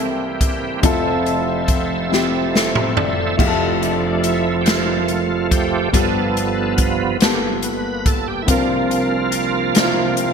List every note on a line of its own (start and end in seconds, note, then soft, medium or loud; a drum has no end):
0.00 0.80 C2 medium
0.00 0.80 C3 medium
0.00 0.81 E3 medium
0.00 0.80 G3 soft
0.00 0.81 A#3 soft
0.00 0.81 C4 medium
0.00 0.83 E4 medium
0.00 0.80 G4 medium
0.00 0.85 G4 medium
0.00 0.40 A4 medium
0.00 0.85 A#4 loud
0.41 kick medium
0.41 closed hi-hat medium
0.81 3.34 F1 medium
0.81 3.35 F2 medium
0.81 3.36 F3 medium
0.81 3.36 A3 medium
0.81 1.65 C4 medium
0.81 3.36 C4 medium
0.81 1.65 E4 medium
0.81 1.66 F4 medium
0.81 3.36 A4 medium
0.81 1.67 A4 loud
0.81 3.36 E5 medium
0.81 kick loud
0.81 closed hi-hat medium
1.26 closed hi-hat soft
1.68 kick medium
1.68 closed hi-hat medium
2.09 2.93 C4 medium
2.09 2.53 E4 medium
2.09 2.54 F4 medium
2.09 snare soft
2.14 2.55 G4 medium
2.55 2.74 E4 medium
2.55 2.74 A4 medium
2.55 snare medium
2.75 2.95 G4 soft
2.75 2.95 C5 medium
2.75 mid tom medium
2.97 3.17 A4 soft
2.97 3.17 D5 medium
2.97 floor tom medium
3.18 3.46 A4 soft
3.18 3.58 E5 medium
3.37 5.90 F1 medium
3.37 5.89 F2 soft
3.37 5.90 F2 medium
3.37 5.89 F3 soft
3.37 5.89 A3 medium
3.37 4.20 E4 medium
3.37 4.21 F4 medium
3.37 4.21 G4 medium
3.37 kick medium
3.37 crash medium
3.41 3.46 G#4 medium
3.48 4.25 A4 medium
3.81 4.25 D4 medium
3.81 closed hi-hat soft
4.23 4.56 E4 medium
4.23 closed hi-hat medium
4.61 4.67 G4 medium
4.65 5.48 E4 medium
4.65 5.47 F4 medium
4.65 5.48 F4 soft
4.65 5.49 G4 soft
4.65 snare loud
4.65 closed hi-hat medium
4.69 4.74 A#4 soft
4.75 5.53 C5 medium
5.08 closed hi-hat soft
5.51 5.91 G4 medium
5.51 kick medium
5.51 closed hi-hat medium
5.93 8.45 G1 medium
5.93 7.17 G2 soft
5.93 8.45 G2 medium
5.93 7.17 F3 soft
5.93 6.75 B3 medium
5.93 7.17 B3 medium
5.93 6.76 F4 medium
5.93 6.76 G4 medium
5.93 6.74 A4 medium
5.93 6.77 A4 medium
5.93 kick medium
5.93 closed hi-hat medium
6.37 closed hi-hat soft
6.78 kick medium
6.78 closed hi-hat medium
7.19 7.27 A#3 soft
7.19 8.03 F4 soft
7.19 7.41 G4 medium
7.19 8.04 G4 medium
7.19 snare medium
7.19 closed hi-hat medium
7.23 8.05 B3 medium
7.23 8.04 A4 medium
7.62 8.07 B4 medium
7.62 closed hi-hat medium
8.06 8.28 A4 medium
8.06 kick medium
8.06 closed hi-hat medium
8.28 8.42 G4 medium
8.42 9.29 C4 medium
8.42 8.49 E4 medium
8.47 10.33 C2 medium
8.47 10.33 C3 medium
8.47 10.33 F3 soft
8.47 10.33 A#3 medium
8.47 9.30 D4 medium
8.47 9.31 F4 medium
8.47 10.33 F4 medium
8.47 9.32 A#4 medium
8.47 kick medium
8.47 closed hi-hat medium
8.91 closed hi-hat soft
9.32 closed hi-hat medium
9.74 10.33 C4 medium
9.74 10.33 D4 medium
9.74 9.83 E4 medium
9.74 snare loud
9.74 closed hi-hat medium
9.78 10.33 A#4 medium
9.83 10.33 F4 medium
10.17 closed hi-hat medium